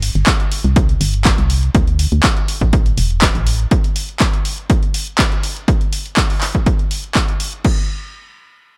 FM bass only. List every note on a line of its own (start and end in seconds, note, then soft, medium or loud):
0.00 0.10 G1 loud
0.15 0.24 G1 medium
0.64 0.96 C2 loud
1.01 1.33 G1 medium
1.38 1.70 C2 medium
1.75 2.07 D2 loud
2.12 2.21 D2 medium
2.61 2.93 A1 loud
2.98 3.30 E1 loud
3.35 3.67 A1 medium